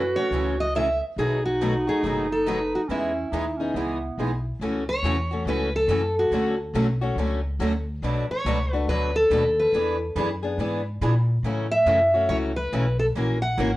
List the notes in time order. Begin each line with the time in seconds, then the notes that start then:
Already playing: F#2 F#4 B4
0.16 A3 C#4 F#4 C#5
0.30 C#2 C#3 E3 F#3 A3 E4 F#4 A4
0.35 C#4
0.60 D#5
0.75 C#3 E3 F#3 A3 C#4 E4 F#4 A4 E5
1.17 B1 B2 D#3 F#3 A3 B3 D#4 F#4 G#4 A4
1.46 F#4
1.62 B2 D#3 F#3 A3 B3 D#4 F#4 A4
1.87 A3 D#4 F#4 G#4
2.03 F#1 B2 D#3 F#3 A3 B3 D#4 F#4 A4
2.32 A4
2.46 B2 D#3 F#3 A3 B3 D#4 F#4 A4 B4
2.75 F#4
2.88 E2 E3 G#3 B3 C#4 D#4 E4 G#4
3.31 D#2 E3 G#3 B3 D#4 G#4
3.57 C#4 D#4 G#4
3.62 B3
3.74 C#2 E3 G#3 B3 D#4 G#4
4.17 B1 E3 G#3 B3 D#4 G#4
4.59 C#2 C#3 E3 A3 C#4 F#4 A4
4.89 C#5
5.03 E2 C#3 E3 A3 C#4 F#4
5.07 A4
5.31 A3 C#4 F#4
5.45 C#2 C#3 E3 A3 C#4 F#4 A4 B4
5.76 A4
5.88 F#2 C#3 E3 A3 C#4 F#4 A4
6.19 F#4
6.31 D2 D3 F#3 A3 C#4 F#4 A4
6.74 B1 D3 F#3 A3 C#4 F#4 A4
7.01 A3 C#4 F#4
7.16 C#2 D3 F#3 A3 C#4 F#4 A4
7.59 D2 D3 F#3 A3 C#4 F#4 A4
8.02 B1 B2 F#3 A3 D4 F#4 B4
8.29 C#5, muted upright bass stroke
8.45 C#2 B2 F#3 A3 D4 F#4 B4
8.72 A3 D4 F#4 B4
8.88 D2 B2 F#3 A3 D4 F#4 B4
9.16 A4
9.30 D#2 B2 F#3 A3 D4 F#4 B4
9.60 B4
9.73 E2 E3 B3 D4 G#4 B4
10.16 F#2 E3 B3 D4 G#4 B4
10.43 B3 D4 G#4
10.58 G#2 E3 B3 D4 G#4 B4
11.01 A#2 E3 B3 D4 G#4 B4
11.43 A2 C#3 E3 F#3 A3 C#4 E4 F#4
11.71 E5
11.86 F#2 C#3 E3 F#3 A3 C#4 E4 F#4
12.14 A3 C#4 F#4
12.29 C#2 C#3 E3 F#3 A3 C#4 E4 F#4 C#5
12.57 B4
12.73 B1 C#3 E3 F#3 A3 C#4 E4 F#4
12.99 A4
13.15 A#1 E3 A#3 C#4 F#4 A#4
13.42 F#5
13.57 G#1 E3 A#3 C#4 F#4 A#4